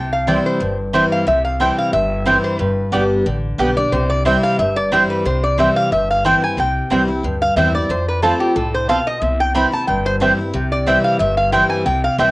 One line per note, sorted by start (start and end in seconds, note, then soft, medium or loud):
0.00 0.36 C2 medium
0.00 0.58 C3 medium
0.00 0.12 G5 medium
0.13 0.27 F5 medium
0.27 0.59 E3 medium
0.27 0.59 G3 medium
0.27 0.37 C4 medium
0.27 0.60 C4 loud
0.27 0.37 E4 medium
0.27 0.60 E4 loud
0.27 0.37 C5 medium
0.27 0.45 D5 medium
0.27 0.38 G5 medium
0.46 0.77 C5 medium
0.60 1.02 G1 medium
0.60 1.24 G2 medium
0.93 1.25 E3 medium
0.93 1.26 G3 medium
0.93 1.03 C4 loud
0.93 1.26 C4 loud
0.93 1.03 E4 loud
0.93 1.26 E4 medium
0.93 1.04 C5 loud
0.93 1.04 G5 loud
1.12 1.27 F5 loud
1.27 1.69 C2 loud
1.27 1.90 C3 medium
1.27 1.44 E5 medium
1.45 1.60 F5 medium
1.60 1.92 E3 medium
1.60 1.92 G3 medium
1.60 1.70 C4 medium
1.60 1.92 C4 medium
1.60 1.70 E4 medium
1.60 1.93 E4 loud
1.60 1.70 C5 loud
1.60 1.70 G5 loud
1.60 1.78 G5 medium
1.78 1.93 F5 loud
1.93 2.35 G1 medium
1.93 2.57 G2 loud
1.93 2.41 E5 medium
2.26 2.58 E3 medium
2.26 2.58 G3 loud
2.26 2.36 C4 medium
2.26 2.59 C4 medium
2.26 2.36 E4 loud
2.26 2.59 E4 loud
2.26 2.36 C5 loud
2.26 2.37 G5 loud
2.44 2.59 C5 medium
2.59 2.80 G1 loud
2.59 3.23 G2 loud
2.59 3.11 B4 medium
2.92 3.21 G1 medium
2.92 3.24 G3 medium
2.92 3.02 B3 loud
2.92 3.25 B3 loud
2.92 3.25 D4 medium
2.92 3.03 G4 medium
2.92 3.25 G4 loud
2.92 3.03 D5 loud
2.92 3.03 G5 loud
3.26 3.54 A1 medium
3.26 3.89 D3 loud
3.58 3.87 B1 medium
3.58 3.76 G3 medium
3.58 3.69 B3 medium
3.58 3.76 B3 medium
3.58 3.77 D4 medium
3.58 3.69 G4 loud
3.58 3.75 G4 loud
3.58 3.69 D5 medium
3.58 3.69 G5 loud
3.76 3.92 D4 medium
3.76 3.92 G4 medium
3.76 3.92 D5 loud
3.92 4.34 C2 loud
3.92 4.56 C3 medium
3.92 4.10 C5 medium
4.10 4.25 D5 loud
4.25 4.57 E3 medium
4.25 4.58 G3 medium
4.25 4.35 C4 medium
4.25 4.58 C4 medium
4.25 4.35 E4 medium
4.25 4.58 E4 loud
4.25 4.36 C5 loud
4.25 4.43 E5 medium
4.25 4.36 G5 loud
4.43 4.58 F5 loud
4.59 5.01 G1 medium
4.59 5.22 G2 loud
4.59 4.76 E5 medium
4.76 4.91 D5 loud
4.92 5.24 E3 medium
4.92 5.24 G3 medium
4.92 5.02 C4 loud
4.92 5.24 C4 loud
4.92 5.02 E4 loud
4.92 5.25 E4 loud
4.92 5.02 C5 loud
4.92 5.09 C5 medium
4.92 5.02 G5 loud
5.10 5.25 B4 medium
5.25 5.67 C2 medium
5.25 5.89 C3 medium
5.25 5.43 C5 medium
5.43 5.58 D5 medium
5.58 5.90 E3 medium
5.58 5.90 G3 medium
5.58 5.68 C4 medium
5.58 5.91 C4 medium
5.58 5.68 E4 medium
5.58 5.91 E4 medium
5.58 5.68 C5 loud
5.58 5.76 E5 medium
5.58 5.69 G5 medium
5.76 5.91 F5 loud
5.91 6.33 G1 medium
5.91 6.55 G2 medium
5.91 6.09 E5 medium
6.11 6.25 F5 loud
6.25 6.42 E3 medium
6.25 6.42 G3 loud
6.25 6.34 C4 medium
6.25 6.42 C4 loud
6.25 6.35 E4 loud
6.25 6.41 E4 medium
6.25 6.35 C5 loud
6.25 6.35 G5 loud
6.25 6.43 G5 medium
6.42 6.58 C4 medium
6.42 6.57 E4 medium
6.42 6.58 G#5 loud
6.57 6.78 C2 loud
6.57 7.21 C3 medium
6.57 6.92 G5 medium
6.90 7.19 C2 medium
6.90 7.08 E3 medium
6.90 7.08 G3 loud
6.90 7.01 C4 loud
6.90 7.09 C4 medium
6.90 7.01 E4 medium
6.90 7.07 E4 loud
6.90 7.01 C5 loud
6.90 7.01 G5 loud
7.08 7.24 C4 soft
7.08 7.23 E4 medium
7.23 7.52 D2 medium
7.23 7.87 G2 medium
7.42 7.56 F5 loud
7.56 7.85 E2 loud
7.56 7.74 E3 medium
7.56 7.74 G3 medium
7.56 7.67 C4 medium
7.56 7.75 C4 loud
7.56 7.67 E4 medium
7.56 7.73 E4 loud
7.56 7.67 C5 loud
7.56 7.74 E5 medium
7.56 7.67 G5 loud
7.74 7.90 C4 soft
7.74 7.89 E4 medium
7.74 7.90 D5 loud
7.89 8.31 F2 loud
7.89 8.53 F2 loud
7.89 8.08 C5 medium
8.08 8.22 B4 medium
8.22 8.54 F3 medium
8.22 8.55 A3 loud
8.22 8.33 C4 medium
8.22 8.55 C4 loud
8.22 8.33 F4 medium
8.22 8.56 F4 medium
8.22 8.40 A4 medium
8.22 8.33 C5 loud
8.22 8.33 A5 loud
8.40 8.55 G4 medium
8.56 8.97 C2 medium
8.56 8.87 A2 loud
8.56 8.73 A4 medium
8.74 8.89 C5 loud
8.89 9.21 B2 medium
8.89 8.99 C4 medium
8.89 8.99 F4 medium
8.89 8.99 C5 loud
8.89 9.06 F5 loud
8.89 8.99 A5 loud
9.07 9.22 D#5 loud
9.22 9.63 C2 loud
9.22 9.85 C3 loud
9.22 9.39 E5 medium
9.40 9.54 G5 loud
9.54 9.72 E3 medium
9.54 9.72 G3 medium
9.54 9.65 C4 medium
9.54 9.73 C4 medium
9.54 9.65 E4 medium
9.54 9.71 E4 loud
9.54 9.65 C5 loud
9.54 9.65 G5 loud
9.54 9.72 B5 loud
9.72 9.88 C4 soft
9.72 9.87 E4 medium
9.72 9.87 A5 loud
9.87 10.29 G1 medium
9.87 10.51 G2 medium
9.87 10.05 G5 medium
10.06 10.15 C5 loud
10.20 10.38 E3 loud
10.20 10.38 G3 loud
10.20 10.31 C4 medium
10.20 10.38 C4 medium
10.20 10.31 E4 medium
10.20 10.37 E4 loud
10.20 10.31 C5 loud
10.20 10.31 G5 loud
10.38 10.54 C4 medium
10.38 10.53 E4 medium
10.54 10.95 C2 loud
10.54 11.17 C3 loud
10.72 10.87 D5 medium
10.87 11.18 E3 medium
10.87 11.19 G3 medium
10.87 10.97 C4 medium
10.87 11.19 C4 medium
10.87 10.97 E4 medium
10.87 11.19 E4 medium
10.87 10.97 C5 medium
10.87 11.04 E5 medium
10.87 10.97 G5 loud
11.04 11.19 F5 loud
11.19 11.61 G1 medium
11.19 11.83 G2 loud
11.19 11.37 E5 medium
11.37 11.52 F5 loud
11.52 11.84 E3 medium
11.52 11.85 G3 medium
11.52 11.62 C4 medium
11.52 11.85 C4 medium
11.52 11.63 E4 loud
11.52 11.85 E4 loud
11.52 11.63 C5 medium
11.52 11.69 G5 medium
11.52 11.63 G5 loud
11.70 11.85 G#5 loud
11.86 12.07 C2 loud
11.86 12.31 C3 loud
11.86 12.03 G5 medium
12.04 12.19 F5 loud
12.18 12.31 C2 medium
12.18 12.31 E3 loud
12.18 12.31 G3 medium
12.18 12.28 C4 medium
12.18 12.31 C4 medium
12.18 12.29 E4 medium
12.18 12.31 E4 loud
12.18 12.29 C5 loud
12.18 12.31 E5 medium
12.18 12.29 G5 loud